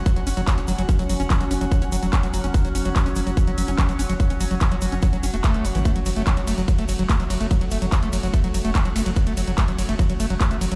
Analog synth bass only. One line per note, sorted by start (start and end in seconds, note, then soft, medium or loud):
0.16 0.23 F#1 medium
0.27 0.33 F#1 loud
0.37 0.44 F#1 loud
0.58 0.64 F#1 medium
0.68 0.75 F#1 loud
0.78 0.85 F#1 medium
0.99 1.06 F#1 medium
1.09 1.16 F#1 loud
1.20 1.26 F#1 medium
1.41 1.47 F#1 medium
1.51 1.57 F#1 loud
1.61 1.68 F#1 medium
1.82 1.88 F#1 medium
1.92 1.99 F#1 loud
2.03 2.09 E1 medium
2.23 2.30 F#1 medium
2.34 2.40 F#1 loud
2.44 2.50 F#1 medium
2.65 2.71 F#1 medium
2.75 2.81 F#1 loud
2.85 2.92 F#1 loud
3.06 3.12 F#1 medium
3.16 3.23 F#1 loud
3.27 3.33 F#1 medium
3.47 3.54 F#1 medium
3.58 3.64 F#1 loud
3.68 3.75 F#1 medium
3.89 3.95 F#1 medium
3.99 4.06 F#1 loud
4.09 4.16 F#1 loud
4.30 4.37 F#1 medium
4.41 4.47 F#1 loud
4.51 4.57 F#1 loud
4.72 4.78 F#1 medium
4.82 4.88 F#1 loud
4.92 4.99 F#1 medium
5.13 5.19 F#1 medium
5.23 5.30 F#1 loud
5.34 5.40 E1 medium
5.54 5.61 F#1 medium
5.65 5.71 F#1 loud
5.75 5.81 G#1 medium
5.96 6.02 F#1 medium
6.06 6.12 F#1 loud
6.16 6.23 F#1 medium
6.37 6.44 F#1 medium
6.47 6.54 F#1 loud
6.58 6.64 F#1 medium
6.78 6.85 F#1 medium
6.89 6.95 F#1 loud
6.99 7.06 F#1 medium
7.20 7.26 F#1 medium
7.30 7.37 F#1 loud
7.41 7.47 F#1 medium
7.61 7.68 F#1 medium
7.72 7.78 F#1 loud
7.82 7.88 F#1 medium
8.03 8.09 F#1 medium
8.13 8.19 F#1 loud
8.23 8.30 F#1 medium
8.44 8.50 F#1 medium
8.54 8.61 F#1 loud
8.65 8.71 E1 loud
8.85 8.92 F#1 medium
8.96 9.02 F#1 loud
9.06 9.12 F#1 medium
9.27 9.33 F#1 medium
9.37 9.44 F#1 loud
9.47 9.54 F#1 medium
9.68 9.75 F#1 medium
9.78 9.85 F#1 loud
9.89 9.95 F#1 medium
10.09 10.16 F#1 medium
10.20 10.26 F#1 loud
10.30 10.37 F#1 loud
10.51 10.57 F#1 medium
10.61 10.68 F#1 loud
10.72 10.75 F#1 medium